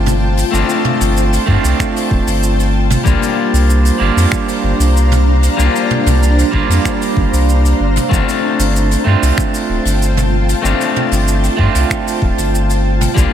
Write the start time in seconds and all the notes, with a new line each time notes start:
Already playing: G1 A3 C4 D4 F4 C5 G5 A5
0.06 mid tom, open hi-hat, shaker
0.37 open hi-hat, shaker
0.51 G1 A3 C4 D4 F4, shaker
0.69 open hi-hat, shaker
0.85 mid tom
1.01 G1, open hi-hat, shaker
1.17 shaker
1.33 open hi-hat, shaker
1.46 G2 A3 C4 D4 F4, kick
1.64 C2, open hi-hat, shaker
1.80 finger snap, kick, shaker
1.96 open hi-hat, shaker
2.11 D1, kick
2.27 G1, open hi-hat, shaker
2.43 shaker
2.59 open hi-hat, shaker
2.90 mid tom, open hi-hat, shaker
3.04 C2 G3 A#3 D4 F4 F5 A#5, kick, shaker
3.22 open hi-hat, shaker
3.53 C2, open hi-hat, shaker
3.70 shaker
3.85 open hi-hat, shaker
3.99 G1 G3 A#3 D4 F4
4.17 F2, open hi-hat, shaker
4.32 finger snap, kick, shaker
4.48 open hi-hat, shaker
4.64 G1
4.79 C2, open hi-hat, shaker
4.97 shaker
5.12 mid tom, open hi-hat, shaker
5.43 open hi-hat, shaker
5.57 C2 G3 A#3 D4 F4, shaker
5.75 open hi-hat, shaker
5.91 mid tom
6.06 C2, mid tom, open hi-hat, shaker
6.23 shaker
6.38 open hi-hat, shaker
6.52 G1 G3 A#3 D4 F4, kick
6.69 F2, open hi-hat, shaker
6.85 finger snap, kick, shaker
7.02 open hi-hat, shaker
7.17 G1, kick
7.32 C2, open hi-hat, shaker
7.49 shaker
7.64 C2, open hi-hat, shaker
7.80 G1
7.96 mid tom, open hi-hat, shaker
8.09 G1 A3 C4 D4 F4 G5 A5, kick
8.13 shaker
8.28 open hi-hat, shaker
8.59 G1, open hi-hat, shaker
8.76 shaker
8.91 open hi-hat, shaker
9.04 G2 A3 C4 D4 F4
9.22 C2, open hi-hat, shaker
9.38 finger snap, kick, shaker
9.54 open hi-hat, shaker
9.69 D1
9.85 G1, open hi-hat, shaker
10.02 shaker
10.17 mid tom, open hi-hat, shaker
10.49 open hi-hat, shaker
10.62 G1 A3 C4 D4 F4, shaker
10.81 open hi-hat, shaker
10.96 mid tom
11.11 G1, open hi-hat, shaker
11.28 shaker
11.43 open hi-hat, shaker
11.57 G2 A3 C4 D4 F4, kick
11.75 C2, open hi-hat, shaker
11.90 finger snap, kick, shaker
12.07 open hi-hat, shaker
12.22 D1, kick
12.38 G1, open hi-hat, shaker
12.55 shaker
12.69 open hi-hat, shaker
13.01 mid tom, open hi-hat, shaker
13.15 C2 G3 A#3 D4 F4, kick, shaker